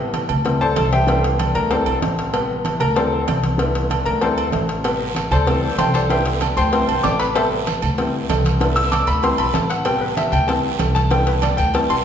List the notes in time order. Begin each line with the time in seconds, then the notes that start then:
Already playing: A1 C3 G3 B3
0.14 cowbell, high conga, low timbale, low agogo
0.29 D2, high conga, low conga, low agogo
0.44 E3 G3 C4, cowbell, high conga, low conga, low agogo
0.61 A4 C5 D5 A5, high conga
0.76 C2, cowbell, high conga, low timbale, low agogo
0.92 G4 C5 E5 G5, cowbell, high conga
1.07 D3 E3 B3, cowbell, high conga, low agogo
1.24 cowbell, high conga
1.39 cowbell, high conga, low timbale, low agogo
1.55 D2 A#4 A#5, high conga, low agogo
1.70 E3 G3 C4 A4 C5 D5 A5, cowbell, high conga, low agogo
1.86 B1, high conga, low agogo
2.02 A1, cowbell, high conga, low timbale
2.18 cowbell, high conga
2.33 C3 G3 B3, cowbell, high conga, low agogo
2.50 high conga
2.65 cowbell, high conga, low timbale, low agogo
2.80 D2 A#4 A#5, high conga, low conga, low agogo
2.95 E3 G3 C4 A4 C5 D5 A5, cowbell, high conga, low agogo
3.13 high conga
3.28 C2, cowbell, high conga, low timbale, low agogo
3.43 cowbell, high conga
3.58 D3 E3 B3, cowbell, high conga, low agogo
3.75 cowbell, high conga
3.90 cowbell, high conga, low timbale, low agogo
4.05 D2 A#4 A#5, high conga, low agogo
4.21 E3 G3 C4 A4 C5 D5 A5, cowbell, high conga, low agogo
4.36 high conga, low agogo
4.52 A1, cowbell, high conga, low timbale
4.68 cowbell, high conga
4.83 C3 G3 B3, cowbell, high conga, low agogo, long guiro
5.00 high conga
5.15 cowbell, high conga, low timbale, low agogo, short guiro
5.31 D2 A4 C5 D5 A5, high conga, low conga, low agogo, short guiro
5.46 E3 G3 C4, cowbell, high conga, low conga, low agogo, long guiro
5.62 high conga
5.78 C2 C5 G5 A5 C6, cowbell, high conga, low timbale, low agogo, short guiro
5.94 A4 C5 D5 A5, cowbell, high conga, short guiro
6.09 D3 E3 B3 G4 C5 E5 G5, cowbell, high conga, low agogo, long guiro
6.26 cowbell, high conga
6.41 cowbell, high conga, low timbale, low agogo, short guiro
6.57 D2 C5 G5 A5 C6, high conga, low agogo, short guiro
6.72 E3 G3 C4, cowbell, high conga, low agogo, long guiro
6.88 B1, high conga, low agogo
7.03 A1 D5 G5 A5 D6, cowbell, high conga, low timbale, short guiro
7.19 B4 B5, cowbell, high conga, short guiro
7.35 C3 G3 B3 A4 C5 E5 A5, cowbell, high conga, low agogo, long guiro
7.52 high conga
7.67 cowbell, high conga, low timbale, low agogo, short guiro
7.82 D2, high conga, low conga, low agogo, short guiro
7.98 E3 G3 C4, cowbell, high conga, low agogo, long guiro
8.14 high conga
8.29 C2, cowbell, high conga, low timbale, low agogo, short guiro
8.45 cowbell, high conga, short guiro
8.60 D3 E3 B3, cowbell, low agogo, long guiro
8.76 E6, cowbell, high conga
8.91 D6, cowbell, high conga, low timbale, low agogo, short guiro
9.07 D2 B5, high conga, low agogo, short guiro
9.22 E3 G3 C4 C6, cowbell, high conga, low agogo, long guiro
9.38 B1 B5, high conga, low agogo
9.54 A1 A5, cowbell, high conga, low timbale, short guiro
9.70 F#5, cowbell, high conga, short guiro
9.85 C3 G3 B3 G5, cowbell, high conga, low agogo, long guiro
10.01 B4, high conga
10.17 E5, cowbell, high conga, low timbale, low agogo, short guiro
10.32 D2 G5, high conga, low conga, low agogo, short guiro
10.47 E3 G3 C4 A5, cowbell, high conga, low agogo, long guiro
10.63 high conga
10.79 C2, cowbell, high conga, low timbale, low agogo, short guiro
10.95 A5, cowbell, high conga, short guiro
11.11 D3 E3 B3 G5, cowbell, high conga, low agogo, long guiro
11.27 B4, cowbell, high conga
11.42 D5, cowbell, high conga, low timbale, low agogo, short guiro
11.57 D2 G5, low agogo, short guiro
11.74 E3 G3 C4 A5, cowbell, high conga, low agogo, long guiro
11.90 B1 C6, high conga, low agogo